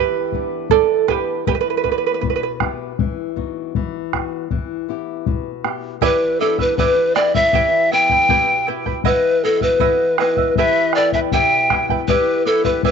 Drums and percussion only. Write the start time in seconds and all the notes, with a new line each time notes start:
0.32 bombo low
0.70 bombo low
1.08 bombo rim, bombo low
1.47 bombo low
1.84 bombo low
2.23 bombo low
2.60 bombo rim, bombo low
2.99 bombo low
3.37 bombo low
3.75 bombo low
4.13 bombo rim, bombo low
4.51 bombo low
5.26 bombo low
5.64 bombo rim
6.01 bombo low
6.58 bombo low
6.78 bombo low
7.16 bombo rim
7.35 bombo low
7.53 bombo low
8.09 bombo low
8.29 bombo low
8.86 bombo low
9.04 bombo low
9.61 bombo low
9.80 bombo low
10.18 bombo rim
10.37 bombo low
10.56 bombo low
10.93 bombo rim
11.12 bombo low
11.32 bombo low
11.70 bombo rim, bombo low
11.89 bombo low
12.08 bombo low
12.65 bombo low
12.83 bombo low